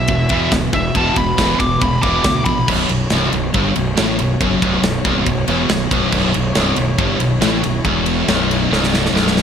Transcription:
Already playing: string section E3 B3 F#4, lead electric guitar E5
0.08 fingered electric bass E1, distorted electric guitar E2 B2, kick, ride
0.29 distorted electric guitar E2 B2 E3, fingered electric bass E2, kick, ride
0.52 fingered electric bass D1, distorted electric guitar E2 B2, kick, snare, ride
0.73 fingered electric bass E1, distorted electric guitar E2 B2, lead electric guitar E5, kick, ride
0.95 fingered electric bass E1, distorted electric guitar E2 B2 E3, lead electric guitar A5, kick, ride
1.16 fingered electric bass E1, distorted electric guitar E2 B2, lead electric guitar B5, kick, ride
1.37 fingered electric bass E1, distorted electric guitar E2 B2 E3, kick, snare, ride
1.59 fingered electric bass E1, distorted electric guitar E2 B2, lead electric guitar D6, kick, ride
1.80 fingered electric bass E1, distorted electric guitar E2 B2, lead electric guitar B5, kick, ride
2.02 fingered electric bass E1, distorted electric guitar E2 B2 E3, lead electric guitar D6, kick, ride
2.24 fingered electric bass D2, distorted electric guitar E2 B2, kick, snare, ride
2.45 fingered electric bass A#1, distorted electric guitar E2 B2, lead electric guitar B5, kick, ride
2.67 fingered electric bass B0, distorted electric guitar B1, string section B3 F#4 C#5, kick, crash
2.89 fingered electric bass B0, distorted electric guitar B1, ride
3.10 fingered electric bass C1, distorted electric guitar C2, snare, ride
3.33 fingered electric bass B0, distorted electric guitar B1, ride
3.54 fingered electric bass G1, distorted electric guitar G2, kick, ride
3.76 fingered electric bass B0, distorted electric guitar B1, ride
3.97 fingered electric bass A1, distorted electric guitar A2, snare, ride
4.19 fingered electric bass B0, distorted electric guitar B1, ride
4.40 fingered electric bass F#1, distorted electric guitar F#2, kick, ride
4.61 fingered electric bass B0, distorted electric guitar B1, kick, ride
4.82 fingered electric bass B0, distorted electric guitar B1, snare, ride
5.04 fingered electric bass C1, distorted electric guitar C2, kick, ride
5.26 fingered electric bass B0, distorted electric guitar B1, kick, ride
5.48 fingered electric bass E1, distorted electric guitar E2, ride
5.69 fingered electric bass B0, distorted electric guitar B1, snare, ride
5.91 fingered electric bass B0, distorted electric guitar B1, kick, ride
6.12 fingered electric bass B0, distorted electric guitar B1, string section E4, kick, crash
6.34 fingered electric bass B0, distorted electric guitar B1, ride
6.55 fingered electric bass C1, distorted electric guitar C2, snare, ride
6.76 fingered electric bass B0, distorted electric guitar B1, ride
6.98 fingered electric bass G1, distorted electric guitar G2, kick, ride
7.19 fingered electric bass B0, distorted electric guitar B1, ride
7.41 fingered electric bass A1, distorted electric guitar A2, snare, ride
7.63 fingered electric bass B0, distorted electric guitar B1, ride
7.85 fingered electric bass E1, distorted electric guitar E2, kick, ride
8.06 ride
8.28 fingered electric bass B0, distorted electric guitar B1, snare, ride
8.51 ride
8.70 fingered electric bass C1, distorted electric guitar C2, snare
8.84 snare
8.94 snare
9.06 snare
9.13 fingered electric bass B0, distorted electric guitar B1, snare
9.27 snare
9.37 snare

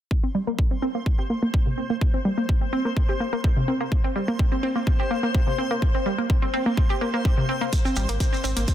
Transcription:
0.11 synth texture C5 C6, kick
0.23 synth pluck C4
0.35 synth pluck G3
0.47 synth pluck A#3
0.59 kick
0.71 synth pluck C4
0.82 synth pluck C4
0.95 synth pluck A#3
1.06 kick
1.19 synth pluck G4
1.30 synth pluck A#3
1.43 synth pluck A#3
1.54 kick
1.66 synth pluck C3
1.78 synth pluck C4
1.90 synth pluck A#3
2.01 kick
2.14 synth pluck C4
2.25 synth pluck G3
2.38 synth pluck A#3
2.49 kick
2.61 synth pluck C4
2.73 synth pluck C4
2.85 synth pluck A#3
2.97 kick
3.09 synth pluck G4
3.20 synth pluck A#3
3.33 synth pluck A#3
3.44 kick
3.57 synth pluck C3
3.68 synth pluck C4
3.81 synth pluck A#3
3.92 kick
4.04 synth pluck C4
4.16 synth pluck G3
4.28 synth pluck A#3
4.39 kick
4.52 synth pluck C4
4.63 synth pluck C4
4.76 synth pluck A#3
4.87 kick
5.00 synth pluck G4
5.11 synth pluck A#3
5.23 synth pluck A#3
5.35 kick
5.47 synth pluck C3
5.58 synth pluck C4
5.71 synth pluck A#3
5.82 kick
5.95 synth pluck C4
6.06 synth pluck G3
6.18 synth pluck A#3
6.30 kick
6.42 synth pluck C4
6.54 synth pluck C4
6.66 synth pluck A#3
6.77 kick
6.90 synth pluck G4
7.01 synth pluck A#3
7.14 synth pluck A#3
7.25 kick
7.38 synth pluck C3
7.49 synth pluck C4
7.61 synth pluck A#3
7.73 kick, closed hi-hat, shekere
7.85 synth pluck C4, shekere
7.96 analog synth bass G#1, synth pluck G3, shekere
8.09 analog synth bass G#1, synth pluck A#3, closed hi-hat, shekere
8.20 kick, closed hi-hat, shekere
8.33 synth pluck C4, shekere
8.44 analog synth bass G#1, synth pluck C4, shekere
8.57 analog synth bass G#1, synth pluck A#3, closed hi-hat, shekere
8.68 kick, closed hi-hat, shekere

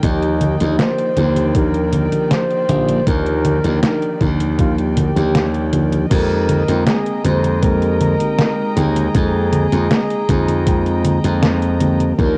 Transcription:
Already playing: string section G5
0.03 slap bass D#2, string section D#3 D5, fm electric piano F3 A#3 D#4 G4 D5, flugelhorn D#4, kick, closed hi-hat, high conga
0.23 closed hi-hat
0.41 closed hi-hat, high conga
0.60 slap bass D#2, fm electric piano F3 A#3 D4 D#4 G4, closed hi-hat, high conga
0.79 flugelhorn C5, snare, closed hi-hat, high conga
0.98 closed hi-hat
1.16 slap bass D#2, fm electric piano F3 A#3 D4 D#4 G4, closed hi-hat, high conga
1.36 closed hi-hat, high conga
1.48 flugelhorn C5
1.54 fm electric piano F3 A#3 D4 D#4 G4, flugelhorn A#4, kick, closed hi-hat, high conga
1.74 closed hi-hat
1.93 closed hi-hat, high conga
2.12 fm electric piano F3 A#3 D4 D#4 G4, closed hi-hat, high conga
2.31 flugelhorn C5, snare, closed hi-hat, high conga
2.51 closed hi-hat
2.68 slap bass A#1, fm electric piano F3 A#3 D4 D#4 G4, closed hi-hat, high conga
2.89 closed hi-hat, high conga
3.06 slap bass D#2, fm electric piano F3 A#3 D4 D#4 G4, flugelhorn A#4, kick, closed hi-hat, high conga
3.26 closed hi-hat
3.45 closed hi-hat, high conga
3.64 slap bass D#2, fm electric piano F3 A#3 D4 D#4 G4, closed hi-hat, high conga
3.83 flugelhorn A#4, snare, closed hi-hat, high conga
4.02 closed hi-hat
4.20 slap bass D#2, fm electric piano F3 A#3 D4 D#4 G4, kick, closed hi-hat, high conga
4.40 closed hi-hat, high conga
4.58 fm electric piano F3 A#3 D4 D#4 G4, flugelhorn F4, kick, closed hi-hat, high conga
4.78 closed hi-hat
4.97 flugelhorn G4, kick, closed hi-hat, high conga
5.16 slap bass D#2, fm electric piano F3 A#3 D4 D#4 G4, closed hi-hat, high conga
5.35 snare, closed hi-hat, high conga
5.54 closed hi-hat
5.72 fm electric piano F3 A#3 D4 D#4 G4, closed hi-hat, high conga
5.92 closed hi-hat, high conga
6.10 slap bass F2, fm electric piano G#3 A#3 C4 D#4 G4, string section G#3 D#5 G5 A#5, flugelhorn A#4, kick, closed hi-hat, crash, high conga
6.49 closed hi-hat, high conga
6.68 slap bass F2, fm electric piano G#3 A#3 C4 D#4 G5, closed hi-hat, high conga
6.87 flugelhorn G#4, snare, closed hi-hat, high conga
7.06 closed hi-hat
7.24 slap bass F2, fm electric piano G#3 A#3 C4 D#4 G4, flugelhorn C5, closed hi-hat, high conga
7.44 closed hi-hat, high conga
7.62 fm electric piano G#3 A#3 C4 D#4 G4, flugelhorn A#4, kick, closed hi-hat, high conga
7.82 closed hi-hat
8.01 closed hi-hat, high conga
8.20 fm electric piano G#3 A#3 C4 D#4 G4, closed hi-hat, high conga
8.39 snare, closed hi-hat, high conga
8.76 slap bass D#2, fm electric piano G#3 A#3 C4 D#4 G5, flugelhorn G#4, closed hi-hat, high conga
8.96 closed hi-hat, high conga
9.14 slap bass F2, fm electric piano G#3 A#3 C4 D#4 G5, kick, closed hi-hat, high conga
9.53 closed hi-hat, high conga
9.71 slap bass F2, fm electric piano G#3 A#3 C4 D#4 G5, closed hi-hat, high conga
9.91 snare, closed hi-hat, high conga
10.10 closed hi-hat
10.28 slap bass F2, fm electric piano G#3 A#3 C4 D#4 G5, kick, closed hi-hat, high conga
10.48 closed hi-hat, high conga
10.66 fm electric piano G#3 A#3 C4 D#4 G5, kick, closed hi-hat, high conga
10.86 closed hi-hat
11.05 closed hi-hat, high conga
11.24 slap bass F2, fm electric piano G#3 A#3 C4 D#4 G5, closed hi-hat, high conga
11.43 snare, closed hi-hat, high conga
11.62 closed hi-hat
11.80 fm electric piano G#3 A#3 C4 D#4 G4, closed hi-hat, high conga
12.00 closed hi-hat, high conga
12.18 slap bass D#2, fm electric piano F3 A#3 D4 D#4 G4, string section A#4 G5 A#5, flugelhorn A#4, kick, closed hi-hat, high conga

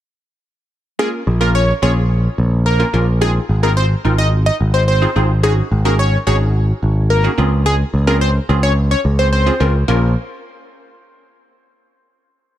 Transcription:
0.99 synth stab A#3 C#4 F4 A#4, digital synth lead G#4
1.27 picked electric bass A#1
1.41 synth stab A#3 C#4 F4 A#4, digital synth lead A#4
1.55 digital synth lead C#5
1.82 picked electric bass A#1, synth stab A#3 C#4 F4 G#4, digital synth lead C#5
2.38 picked electric bass A#1
2.66 digital synth lead A#4
2.79 synth stab A#3 C#4 F4 A#4
2.93 picked electric bass A#1, synth stab A#3 C#4 F4 A#4
3.21 synth stab C4 D#4 F4 G#4, digital synth lead G#4
3.49 picked electric bass G#1
3.63 synth stab C4 D#4 F4 G#4, digital synth lead A#4
3.77 digital synth lead C5
4.05 picked electric bass G#1, synth stab C4 D#4 F4 A#4
4.18 digital synth lead D#5
4.46 digital synth lead D#5
4.60 picked electric bass G#1
4.74 digital synth lead C5
4.88 digital synth lead C5
5.02 synth stab C4 D#4 F4 G#4
5.16 picked electric bass G#1, synth stab C4 D#4 F4 G#4
5.43 synth stab C#4 D#4 F#4 G#4, digital synth lead G#4
5.71 picked electric bass G#1
5.85 synth stab C#4 D#4 F#4 G#4, digital synth lead A#4
5.99 digital synth lead C#5
6.27 picked electric bass G#1, synth stab C#4 D#4 F#4 G#4, digital synth lead C#5
6.83 picked electric bass G#1
7.10 digital synth lead A#4
7.24 synth stab C#4 D#4 F#4 G#4
7.38 picked electric bass C#2, synth stab C4 C#4 F4 G#4
7.66 digital synth lead G#4
7.94 picked electric bass C#2
8.07 synth stab C4 C#4 F4 G#4, digital synth lead A#4
8.21 digital synth lead C5
8.49 picked electric bass C#2, synth stab C4 C#4 F4 G#4
8.63 digital synth lead C#5
8.91 digital synth lead C#5
9.05 picked electric bass C#2
9.19 digital synth lead C5
9.33 digital synth lead C5
9.46 synth stab C4 C#4 F4 G#4
9.60 picked electric bass C#2, synth stab C4 C#4 F4 A#4
9.88 picked electric bass A#1, synth stab A#3 C#4 F4 A#4

